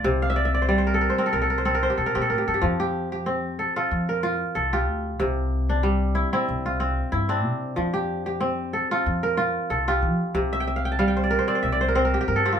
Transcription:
0.00 0.36 F4 medium
0.00 0.71 A4 medium
0.00 0.36 D5 medium
0.04 1.07 C2 medium
0.04 2.38 C3 medium
0.22 0.51 F5 medium
0.30 0.45 E5 medium
0.36 0.54 D5 medium
0.45 1.48 E5 medium
0.54 0.68 D5 medium
0.62 0.78 C5 medium
0.69 2.67 G3 medium
0.69 1.79 D5 medium
0.78 1.09 C5 medium
0.87 1.01 A#4 medium
0.94 1.25 A4 medium
1.01 1.18 A#4 medium
1.10 1.58 C5 medium
1.18 1.65 C4 medium
1.18 1.32 A#4 medium
1.26 1.41 A4 medium
1.33 1.85 C2 medium
1.33 1.50 A#4 medium
1.42 1.65 A4 medium
1.50 1.71 A#4 medium
1.58 1.82 C5 medium
1.65 2.15 C4 medium
1.65 1.97 A4 medium
1.75 2.04 A#4 medium
1.83 3.02 C5 medium
1.90 2.15 G4 medium
1.98 2.14 C3 medium
1.98 2.21 A4 medium
2.06 2.28 A#4 medium
2.15 2.29 A#2 medium
2.15 3.26 C4 medium
2.15 2.38 G4 medium
2.22 2.47 A4 medium
2.30 2.46 A2 medium
2.30 2.54 A#4 medium
2.38 2.54 G4 medium
2.48 2.61 G2 medium
2.48 3.59 A4 medium
2.54 2.79 G4 medium
2.62 3.65 F2 loud
2.62 4.96 F3 medium
2.80 3.12 G4 medium
3.12 4.53 G4 medium
3.26 5.06 C4 medium
3.59 3.76 A4 medium
3.76 4.23 F4 medium
3.76 4.55 A4 medium
3.91 4.42 F2 medium
4.09 4.61 A#4 medium
4.23 4.73 F4 medium
4.55 4.88 C2 loud
4.55 5.87 A4 medium
4.73 6.21 F4 medium
4.73 6.14 G4 medium
4.88 5.13 D2 medium
5.20 6.22 C2 loud
5.20 7.54 C3 medium
5.69 7.29 D4 medium
5.83 7.82 G3 medium
6.15 6.33 E4 medium
6.33 6.80 C4 medium
6.33 7.12 E4 medium
6.49 7.00 C2 loud
6.66 7.18 F4 medium
6.80 7.29 C4 medium
7.12 7.45 G2 medium
7.12 7.82 E4 medium
7.29 8.40 C4 medium
7.29 8.97 D4 medium
7.45 7.71 C3 medium
7.76 8.80 F2 loud
7.76 10.10 F3 medium
7.94 8.26 G4 medium
8.26 9.67 G4 medium
8.41 10.21 C4 medium
8.73 8.91 A4 medium
8.91 9.37 F4 medium
8.91 9.70 A4 medium
9.06 9.57 F2 medium
9.23 9.76 A#4 medium
9.37 9.87 F4 medium
9.70 10.04 C2 medium
9.70 11.02 A4 medium
9.88 10.59 F4 medium
9.88 11.29 G4 medium
10.02 10.28 F3 medium
10.34 11.37 C2 medium
10.34 12.60 C3 medium
10.53 10.67 E5 medium
10.60 10.85 G5 medium
10.67 11.05 E5 medium
10.76 10.99 F5 medium
10.85 11.07 G5 medium
10.92 11.37 A5 medium
10.99 12.60 G3 medium
10.99 11.69 F5 medium
11.08 12.01 G5 medium
11.17 11.38 C5 medium
11.24 11.47 D5 medium
11.31 11.88 A#4 medium
11.39 11.55 C5 medium
11.48 11.95 C4 medium
11.48 11.72 D5 medium
11.55 11.80 C5 medium
11.63 12.15 C2 loud
11.63 12.58 E5 medium
11.72 12.60 D5 medium
11.81 11.95 C5 medium
11.88 12.04 A#4 medium
11.95 12.45 C4 medium
11.95 12.60 C5 medium
12.05 12.27 A#4 medium
12.14 12.20 G4 medium
12.21 12.45 G4 medium
12.28 12.60 G2 medium
12.28 12.60 A#4 medium
12.36 12.59 A4 medium
12.45 12.60 C4 medium
12.45 12.60 G4 medium
12.52 12.60 F4 medium

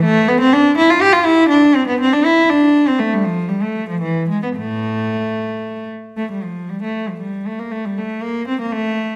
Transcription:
0.04 0.28 A3 loud
0.28 0.40 B3 loud
0.40 0.52 C4 loud
0.53 0.78 D4 loud
0.77 0.89 E4 loud
0.90 1.02 F4 medium
1.01 1.14 G4 loud
1.13 1.26 F4 medium
1.25 1.50 E4 loud
1.50 1.74 D4 medium
1.75 1.87 C4 medium
1.87 1.99 B3 medium
2.00 2.12 C4 loud
2.13 2.25 D4 medium
2.25 2.50 E4 loud
2.49 2.87 D4 medium
2.87 3.00 C4 medium
2.99 3.12 A3 medium
3.13 3.25 G3 medium
3.24 3.50 F3 medium
3.49 3.62 G3 medium
3.63 3.88 A3 medium
3.89 4.02 F3 medium
4.02 4.28 E3 medium
4.29 4.42 G#3 medium
4.43 4.48 B3 medium
4.57 5.33 A2 medium
4.57 5.88 A3 medium
6.17 6.29 A3 medium
6.31 6.43 G3 medium
6.43 6.69 F3 medium
6.70 6.82 G3 medium
6.83 7.07 A3 medium
7.09 7.20 F3 medium
7.21 7.45 G3 medium
7.46 7.58 A3 medium
7.59 7.71 A#3 medium
7.72 7.84 A3 medium
7.85 7.97 G3 medium
7.98 8.22 A3 medium
8.23 8.47 A#3 medium
8.47 8.59 C4 medium
8.61 8.72 A#3 medium
8.72 9.16 A3 medium

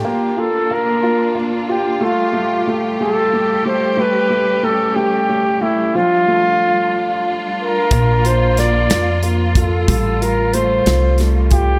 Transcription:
0.00 1.99 D4 medium
0.00 0.41 G4 medium
0.04 1.99 A#3 medium
0.04 0.69 A#3 medium
0.04 3.94 F4 medium
0.37 1.01 F4 medium
0.37 0.74 A4 medium
0.71 1.34 A#3 medium
0.71 1.37 A#4 loud
1.03 1.67 F4 medium
1.35 1.99 A#3 medium
1.69 2.01 F4 medium
1.69 2.00 G4 medium
2.01 7.87 G3 medium
2.01 2.32 A3 medium
2.01 2.73 F4 medium
2.01 5.91 G4 medium
2.33 2.66 A3 medium
2.67 2.99 A3 medium
3.01 3.32 A3 medium
3.01 3.62 A4 loud
3.33 3.64 A3 medium
3.65 3.96 A3 medium
3.65 4.01 C5 medium
3.97 4.29 A3 medium
3.97 5.92 C#4 medium
3.97 4.65 B4 loud
4.30 4.62 A3 medium
4.63 4.95 A3 medium
4.63 4.97 A4 medium
4.96 5.28 A3 medium
4.96 5.63 G4 loud
5.29 5.60 A3 medium
5.61 5.93 A3 medium
5.61 5.97 E4 medium
5.93 7.88 F3 medium
5.93 9.83 D4 medium
5.93 11.79 F4 medium
5.93 7.32 F4 loud
6.28 7.55 A3 medium
7.61 8.27 A#4 loud
7.91 8.86 A#1 loud
7.91 9.87 A#3 medium
7.91 8.57 A#3 medium
7.91 kick loud
7.91 closed hi-hat medium
8.25 8.89 F4 medium
8.25 8.60 C5 loud
8.25 closed hi-hat medium
8.57 9.22 A#3 medium
8.57 9.23 D5 loud
8.57 snare soft
8.57 closed hi-hat medium
8.90 9.84 F2 medium
8.90 9.55 F4 medium
8.90 snare loud
8.90 closed hi-hat medium
9.23 9.87 A#3 medium
9.23 closed hi-hat medium
9.55 9.88 F4 medium
9.55 10.23 A4 medium
9.55 kick medium
9.55 closed hi-hat medium
9.88 10.83 A1 loud
9.88 11.79 G3 medium
9.88 kick loud
9.88 closed hi-hat medium
10.21 10.85 F4 medium
10.21 10.55 A#4 medium
10.21 closed hi-hat medium
10.54 11.18 A3 medium
10.54 11.19 C5 loud
10.54 closed hi-hat medium
10.86 11.79 C2 loud
10.86 11.51 F4 medium
10.86 snare loud
10.86 closed hi-hat medium
11.18 11.79 A3 medium
11.18 snare soft
11.18 closed hi-hat medium
11.51 11.79 F4 medium
11.51 11.79 G4 loud
11.51 kick medium
11.51 closed hi-hat medium

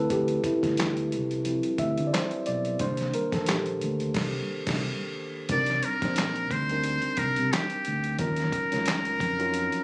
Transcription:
0.00 0.38 D2 loud
0.00 0.23 F3 medium
0.00 0.23 C4 soft
0.00 0.24 E4 medium
0.00 0.12 A4 medium
0.00 2.82 B4 medium
0.10 0.27 G4 medium
0.10 kick loud
0.10 closed hi-hat medium
0.28 closed hi-hat soft
0.44 0.76 E4 medium
0.44 kick medium
0.44 closed hi-hat medium
0.63 1.13 D2 medium
0.63 kick medium
0.63 snare soft
0.63 closed hi-hat soft
0.77 snare loud
0.77 clap medium
0.77 closed hi-hat medium
0.97 closed hi-hat soft
1.12 1.60 C2 medium
1.12 closed hi-hat medium
1.31 closed hi-hat soft
1.45 1.76 F3 soft
1.45 1.76 C4 soft
1.45 1.76 E4 medium
1.45 closed hi-hat medium
1.63 closed hi-hat soft
1.78 1.96 D2 medium
1.78 1.92 E5 loud
1.78 kick medium
1.78 closed hi-hat medium
1.98 2.12 D3 loud
1.98 closed hi-hat soft
2.07 2.13 D5 medium
2.13 2.48 C5 loud
2.13 snare loud
2.13 clap medium
2.13 closed hi-hat medium
2.31 closed hi-hat soft
2.46 2.78 B1 medium
2.46 2.81 D5 medium
2.46 closed hi-hat medium
2.65 closed hi-hat soft
2.79 3.11 C2 loud
2.79 3.77 D#3 medium
2.79 3.77 A#3 soft
2.79 3.78 D4 medium
2.79 3.15 C5 medium
2.79 kick loud
2.79 closed hi-hat medium
2.97 snare soft
2.97 closed hi-hat soft
3.14 3.33 A#4 medium
3.14 closed hi-hat medium
3.32 3.77 A#1 medium
3.32 3.48 A4 medium
3.32 kick medium
3.32 snare soft
3.32 closed hi-hat soft
3.46 5.12 G4 medium
3.46 snare loud
3.46 clap medium
3.46 closed hi-hat medium
3.66 closed hi-hat soft
3.81 4.12 D2 medium
3.81 closed hi-hat medium
4.00 closed hi-hat soft
4.14 4.39 C2 loud
4.14 kick loud
4.14 snare loud
4.14 crash medium
4.67 4.90 C2 loud
4.67 kick loud
4.67 snare loud
4.67 crash medium
5.49 5.80 C2 loud
5.49 5.89 G3 medium
5.49 5.89 C4 medium
5.49 5.89 D4 medium
5.49 5.90 D#4 medium
5.49 5.90 A#4 medium
5.49 5.86 D5 loud
5.49 kick loud
5.49 closed hi-hat medium
5.66 snare soft
5.66 closed hi-hat soft
5.83 6.53 A#4 loud
5.83 closed hi-hat medium
6.02 6.46 A#1 medium
6.02 6.51 G3 medium
6.02 6.52 C4 medium
6.02 6.52 D4 medium
6.02 6.53 D#4 medium
6.02 6.53 C5 medium
6.02 kick medium
6.02 snare soft
6.02 closed hi-hat soft
6.16 snare loud
6.16 clap medium
6.16 closed hi-hat medium
6.36 closed hi-hat soft
6.51 6.98 D2 medium
6.51 7.20 C5 loud
6.51 kick medium
6.51 closed hi-hat medium
6.69 7.72 G3 medium
6.69 7.72 C4 medium
6.69 7.72 D4 medium
6.69 7.73 D#4 medium
6.69 7.73 A#4 medium
6.69 closed hi-hat soft
6.84 closed hi-hat medium
7.02 closed hi-hat soft
7.17 7.35 C2 medium
7.17 7.54 A#4 medium
7.17 kick medium
7.17 closed hi-hat medium
7.36 7.51 C3 loud
7.36 closed hi-hat soft
7.53 8.19 G4 medium
7.53 snare loud
7.53 clap medium
7.53 closed hi-hat medium
7.70 closed hi-hat soft
7.85 8.17 D2 medium
7.85 closed hi-hat medium
8.04 closed hi-hat soft
8.18 8.50 D#2 medium
8.18 8.58 F#3 medium
8.18 8.58 C#4 medium
8.18 8.59 D#4 medium
8.18 8.59 F4 medium
8.18 9.84 A#4 medium
8.18 8.59 A#4 medium
8.18 kick loud
8.18 closed hi-hat medium
8.36 snare soft
8.36 closed hi-hat soft
8.52 kick medium
8.52 closed hi-hat medium
8.71 9.17 C#2 medium
8.71 9.21 F#3 medium
8.71 9.21 C#4 medium
8.71 9.22 D#4 medium
8.71 9.22 F4 medium
8.71 9.22 A#4 medium
8.71 snare soft
8.71 closed hi-hat soft
8.86 snare loud
8.86 clap medium
8.86 closed hi-hat medium
9.05 closed hi-hat soft
9.20 9.68 F2 medium
9.20 kick medium
9.20 closed hi-hat medium
9.39 9.84 C#4 medium
9.39 9.84 D#4 medium
9.39 9.84 F4 medium
9.39 9.84 F#4 medium
9.39 9.84 A#4 medium
9.39 closed hi-hat soft
9.54 closed hi-hat medium
9.72 closed hi-hat soft

